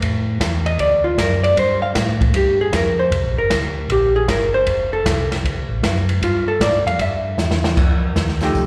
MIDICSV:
0, 0, Header, 1, 4, 480
1, 0, Start_track
1, 0, Tempo, 388098
1, 15, Time_signature, 4, 2, 24, 8
1, 10717, End_track
2, 0, Start_track
2, 0, Title_t, "Hollow-body jazz guitar"
2, 0, Program_c, 0, 26
2, 817, Note_on_c, 0, 75, 98
2, 973, Note_off_c, 0, 75, 0
2, 991, Note_on_c, 0, 74, 74
2, 1288, Note_on_c, 0, 65, 69
2, 1292, Note_off_c, 0, 74, 0
2, 1449, Note_off_c, 0, 65, 0
2, 1474, Note_on_c, 0, 70, 76
2, 1773, Note_off_c, 0, 70, 0
2, 1774, Note_on_c, 0, 74, 79
2, 1932, Note_off_c, 0, 74, 0
2, 1968, Note_on_c, 0, 72, 84
2, 2248, Note_off_c, 0, 72, 0
2, 2253, Note_on_c, 0, 77, 95
2, 2351, Note_off_c, 0, 77, 0
2, 2923, Note_on_c, 0, 67, 84
2, 3218, Note_off_c, 0, 67, 0
2, 3229, Note_on_c, 0, 68, 89
2, 3380, Note_off_c, 0, 68, 0
2, 3406, Note_on_c, 0, 70, 74
2, 3697, Note_off_c, 0, 70, 0
2, 3702, Note_on_c, 0, 72, 79
2, 4145, Note_off_c, 0, 72, 0
2, 4186, Note_on_c, 0, 70, 88
2, 4626, Note_off_c, 0, 70, 0
2, 4847, Note_on_c, 0, 67, 83
2, 5139, Note_off_c, 0, 67, 0
2, 5144, Note_on_c, 0, 68, 85
2, 5297, Note_off_c, 0, 68, 0
2, 5322, Note_on_c, 0, 70, 84
2, 5613, Note_off_c, 0, 70, 0
2, 5618, Note_on_c, 0, 72, 103
2, 6062, Note_off_c, 0, 72, 0
2, 6097, Note_on_c, 0, 69, 90
2, 6541, Note_off_c, 0, 69, 0
2, 7714, Note_on_c, 0, 65, 76
2, 8012, Note_off_c, 0, 65, 0
2, 8013, Note_on_c, 0, 69, 92
2, 8170, Note_off_c, 0, 69, 0
2, 8185, Note_on_c, 0, 74, 73
2, 8487, Note_off_c, 0, 74, 0
2, 8494, Note_on_c, 0, 77, 101
2, 8650, Note_off_c, 0, 77, 0
2, 8676, Note_on_c, 0, 76, 81
2, 9493, Note_off_c, 0, 76, 0
2, 10418, Note_on_c, 0, 53, 65
2, 10423, Note_on_c, 0, 57, 68
2, 10430, Note_on_c, 0, 63, 67
2, 10438, Note_on_c, 0, 67, 68
2, 10717, Note_off_c, 0, 53, 0
2, 10717, Note_off_c, 0, 57, 0
2, 10717, Note_off_c, 0, 63, 0
2, 10717, Note_off_c, 0, 67, 0
2, 10717, End_track
3, 0, Start_track
3, 0, Title_t, "Tonewheel organ"
3, 0, Program_c, 1, 16
3, 12, Note_on_c, 1, 45, 75
3, 480, Note_off_c, 1, 45, 0
3, 494, Note_on_c, 1, 40, 83
3, 961, Note_off_c, 1, 40, 0
3, 970, Note_on_c, 1, 38, 80
3, 1439, Note_off_c, 1, 38, 0
3, 1448, Note_on_c, 1, 42, 78
3, 1918, Note_off_c, 1, 42, 0
3, 1934, Note_on_c, 1, 43, 80
3, 2401, Note_off_c, 1, 43, 0
3, 2412, Note_on_c, 1, 45, 88
3, 2880, Note_off_c, 1, 45, 0
3, 2889, Note_on_c, 1, 43, 76
3, 3358, Note_off_c, 1, 43, 0
3, 3373, Note_on_c, 1, 41, 82
3, 3840, Note_off_c, 1, 41, 0
3, 3855, Note_on_c, 1, 36, 76
3, 4003, Note_on_c, 1, 34, 56
3, 4011, Note_off_c, 1, 36, 0
3, 4170, Note_off_c, 1, 34, 0
3, 4174, Note_on_c, 1, 31, 65
3, 4323, Note_on_c, 1, 38, 85
3, 4324, Note_off_c, 1, 31, 0
3, 4795, Note_off_c, 1, 38, 0
3, 4808, Note_on_c, 1, 34, 87
3, 5277, Note_off_c, 1, 34, 0
3, 5289, Note_on_c, 1, 31, 91
3, 5758, Note_off_c, 1, 31, 0
3, 5768, Note_on_c, 1, 29, 83
3, 6237, Note_off_c, 1, 29, 0
3, 6250, Note_on_c, 1, 36, 89
3, 6718, Note_off_c, 1, 36, 0
3, 6731, Note_on_c, 1, 38, 76
3, 6866, Note_on_c, 1, 36, 51
3, 6888, Note_off_c, 1, 38, 0
3, 7038, Note_on_c, 1, 33, 69
3, 7040, Note_off_c, 1, 36, 0
3, 7194, Note_off_c, 1, 33, 0
3, 7203, Note_on_c, 1, 42, 90
3, 7674, Note_off_c, 1, 42, 0
3, 7691, Note_on_c, 1, 43, 84
3, 8158, Note_off_c, 1, 43, 0
3, 8167, Note_on_c, 1, 45, 94
3, 8314, Note_on_c, 1, 43, 60
3, 8325, Note_off_c, 1, 45, 0
3, 8482, Note_on_c, 1, 41, 61
3, 8484, Note_off_c, 1, 43, 0
3, 8636, Note_off_c, 1, 41, 0
3, 8646, Note_on_c, 1, 43, 72
3, 9115, Note_off_c, 1, 43, 0
3, 9127, Note_on_c, 1, 40, 89
3, 9595, Note_off_c, 1, 40, 0
3, 9611, Note_on_c, 1, 41, 78
3, 10058, Note_off_c, 1, 41, 0
3, 10089, Note_on_c, 1, 39, 63
3, 10537, Note_off_c, 1, 39, 0
3, 10571, Note_on_c, 1, 36, 68
3, 10717, Note_off_c, 1, 36, 0
3, 10717, End_track
4, 0, Start_track
4, 0, Title_t, "Drums"
4, 20, Note_on_c, 9, 36, 19
4, 28, Note_on_c, 9, 51, 65
4, 144, Note_off_c, 9, 36, 0
4, 152, Note_off_c, 9, 51, 0
4, 499, Note_on_c, 9, 36, 21
4, 503, Note_on_c, 9, 38, 66
4, 505, Note_on_c, 9, 44, 62
4, 505, Note_on_c, 9, 51, 70
4, 622, Note_off_c, 9, 36, 0
4, 627, Note_off_c, 9, 38, 0
4, 629, Note_off_c, 9, 44, 0
4, 629, Note_off_c, 9, 51, 0
4, 817, Note_on_c, 9, 51, 44
4, 941, Note_off_c, 9, 51, 0
4, 977, Note_on_c, 9, 36, 23
4, 978, Note_on_c, 9, 51, 55
4, 1101, Note_off_c, 9, 36, 0
4, 1102, Note_off_c, 9, 51, 0
4, 1458, Note_on_c, 9, 36, 25
4, 1462, Note_on_c, 9, 38, 68
4, 1464, Note_on_c, 9, 44, 60
4, 1464, Note_on_c, 9, 51, 70
4, 1581, Note_off_c, 9, 36, 0
4, 1585, Note_off_c, 9, 38, 0
4, 1588, Note_off_c, 9, 44, 0
4, 1588, Note_off_c, 9, 51, 0
4, 1782, Note_on_c, 9, 51, 49
4, 1906, Note_off_c, 9, 51, 0
4, 1937, Note_on_c, 9, 36, 18
4, 1944, Note_on_c, 9, 51, 69
4, 2061, Note_off_c, 9, 36, 0
4, 2068, Note_off_c, 9, 51, 0
4, 2413, Note_on_c, 9, 38, 74
4, 2416, Note_on_c, 9, 44, 57
4, 2416, Note_on_c, 9, 51, 75
4, 2417, Note_on_c, 9, 36, 24
4, 2537, Note_off_c, 9, 38, 0
4, 2539, Note_off_c, 9, 44, 0
4, 2539, Note_off_c, 9, 51, 0
4, 2541, Note_off_c, 9, 36, 0
4, 2732, Note_on_c, 9, 36, 54
4, 2739, Note_on_c, 9, 51, 45
4, 2856, Note_off_c, 9, 36, 0
4, 2862, Note_off_c, 9, 51, 0
4, 2892, Note_on_c, 9, 51, 59
4, 2893, Note_on_c, 9, 36, 22
4, 3016, Note_off_c, 9, 51, 0
4, 3017, Note_off_c, 9, 36, 0
4, 3373, Note_on_c, 9, 38, 72
4, 3375, Note_on_c, 9, 36, 24
4, 3375, Note_on_c, 9, 44, 61
4, 3375, Note_on_c, 9, 51, 76
4, 3496, Note_off_c, 9, 38, 0
4, 3499, Note_off_c, 9, 36, 0
4, 3499, Note_off_c, 9, 44, 0
4, 3499, Note_off_c, 9, 51, 0
4, 3854, Note_on_c, 9, 36, 23
4, 3858, Note_on_c, 9, 51, 61
4, 3978, Note_off_c, 9, 36, 0
4, 3982, Note_off_c, 9, 51, 0
4, 4333, Note_on_c, 9, 36, 23
4, 4334, Note_on_c, 9, 38, 76
4, 4336, Note_on_c, 9, 44, 58
4, 4336, Note_on_c, 9, 51, 73
4, 4457, Note_off_c, 9, 36, 0
4, 4457, Note_off_c, 9, 38, 0
4, 4460, Note_off_c, 9, 44, 0
4, 4460, Note_off_c, 9, 51, 0
4, 4814, Note_on_c, 9, 36, 22
4, 4819, Note_on_c, 9, 51, 54
4, 4937, Note_off_c, 9, 36, 0
4, 4943, Note_off_c, 9, 51, 0
4, 5295, Note_on_c, 9, 36, 25
4, 5297, Note_on_c, 9, 38, 78
4, 5300, Note_on_c, 9, 44, 55
4, 5300, Note_on_c, 9, 51, 70
4, 5419, Note_off_c, 9, 36, 0
4, 5421, Note_off_c, 9, 38, 0
4, 5424, Note_off_c, 9, 44, 0
4, 5424, Note_off_c, 9, 51, 0
4, 5771, Note_on_c, 9, 51, 60
4, 5774, Note_on_c, 9, 36, 26
4, 5894, Note_off_c, 9, 51, 0
4, 5897, Note_off_c, 9, 36, 0
4, 6253, Note_on_c, 9, 36, 23
4, 6255, Note_on_c, 9, 38, 75
4, 6257, Note_on_c, 9, 44, 66
4, 6257, Note_on_c, 9, 51, 80
4, 6377, Note_off_c, 9, 36, 0
4, 6379, Note_off_c, 9, 38, 0
4, 6381, Note_off_c, 9, 44, 0
4, 6381, Note_off_c, 9, 51, 0
4, 6576, Note_on_c, 9, 38, 47
4, 6578, Note_on_c, 9, 51, 49
4, 6699, Note_off_c, 9, 38, 0
4, 6702, Note_off_c, 9, 51, 0
4, 6734, Note_on_c, 9, 36, 25
4, 6746, Note_on_c, 9, 51, 50
4, 6857, Note_off_c, 9, 36, 0
4, 6870, Note_off_c, 9, 51, 0
4, 7212, Note_on_c, 9, 36, 23
4, 7216, Note_on_c, 9, 38, 73
4, 7218, Note_on_c, 9, 44, 61
4, 7218, Note_on_c, 9, 51, 68
4, 7336, Note_off_c, 9, 36, 0
4, 7340, Note_off_c, 9, 38, 0
4, 7342, Note_off_c, 9, 44, 0
4, 7342, Note_off_c, 9, 51, 0
4, 7531, Note_on_c, 9, 51, 51
4, 7655, Note_off_c, 9, 51, 0
4, 7690, Note_on_c, 9, 36, 22
4, 7700, Note_on_c, 9, 51, 63
4, 7814, Note_off_c, 9, 36, 0
4, 7824, Note_off_c, 9, 51, 0
4, 8170, Note_on_c, 9, 36, 24
4, 8173, Note_on_c, 9, 38, 76
4, 8176, Note_on_c, 9, 44, 54
4, 8176, Note_on_c, 9, 51, 70
4, 8294, Note_off_c, 9, 36, 0
4, 8297, Note_off_c, 9, 38, 0
4, 8299, Note_off_c, 9, 44, 0
4, 8299, Note_off_c, 9, 51, 0
4, 8502, Note_on_c, 9, 51, 49
4, 8625, Note_off_c, 9, 51, 0
4, 8648, Note_on_c, 9, 36, 20
4, 8648, Note_on_c, 9, 51, 55
4, 8772, Note_off_c, 9, 36, 0
4, 8772, Note_off_c, 9, 51, 0
4, 9128, Note_on_c, 9, 38, 54
4, 9130, Note_on_c, 9, 44, 63
4, 9251, Note_off_c, 9, 38, 0
4, 9254, Note_off_c, 9, 44, 0
4, 9286, Note_on_c, 9, 38, 62
4, 9410, Note_off_c, 9, 38, 0
4, 9452, Note_on_c, 9, 38, 93
4, 9576, Note_off_c, 9, 38, 0
4, 9610, Note_on_c, 9, 36, 68
4, 9611, Note_on_c, 9, 49, 63
4, 9734, Note_off_c, 9, 36, 0
4, 9735, Note_off_c, 9, 49, 0
4, 10091, Note_on_c, 9, 38, 60
4, 10093, Note_on_c, 9, 42, 47
4, 10214, Note_off_c, 9, 38, 0
4, 10217, Note_off_c, 9, 42, 0
4, 10248, Note_on_c, 9, 38, 26
4, 10372, Note_off_c, 9, 38, 0
4, 10396, Note_on_c, 9, 46, 39
4, 10408, Note_on_c, 9, 38, 38
4, 10520, Note_off_c, 9, 46, 0
4, 10532, Note_off_c, 9, 38, 0
4, 10572, Note_on_c, 9, 46, 41
4, 10573, Note_on_c, 9, 36, 31
4, 10696, Note_off_c, 9, 36, 0
4, 10696, Note_off_c, 9, 46, 0
4, 10717, End_track
0, 0, End_of_file